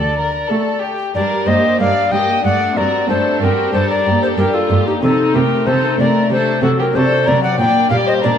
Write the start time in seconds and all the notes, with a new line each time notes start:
Already playing: D2 A4 D5
0.18 A#4
0.50 A3 F#4 A4
0.83 G4
1.15 G2 G3 D4 A#4 D5
1.47 G2 A#3 G4 C5 D#5
1.80 G2 G3 A#3 D4 G4 D5 F5
2.12 G2 A#3 G4 D#5 G5
2.44 G2 A3 D4 D5 F#5
2.77 G2 C4 F#4 A#4 D5
3.09 G2 A3 C4 D4 A4 C5
3.41 G2 C4 F#4 G4 A#4
3.74 G2 G3 D4 A4 C5
3.90 A#4 D5
4.06 G2 A#3 G4
4.22 A4 C5
4.37 G2 G3 A#3 D4 G4 A#4
4.54 F4 A4
4.70 G2 A#3 G4
4.87 D#4 G4
5.02 C3 C4 D#4 A4
5.34 C3 A3 C4 G4 A#4
5.67 C3 A3 C4 D#4 A4 C5
5.98 C3 A3 C4 A#4 D5
6.31 C3 A3 D4 A4 C5
6.63 C3 F#3 C4 F#4 A4
6.79 G4 A#4
6.95 C3 A3 D4 F#4 A4 C5
7.26 C3 F#3 C4 A#4 D5
7.43 D5 F#5
7.59 A#2 A#3 D4 D5 G5
7.90 A#2 G3 G4 D5 F5
8.08 C5 D#5
8.23 A#2 A#3 D4 G4 A#4 D5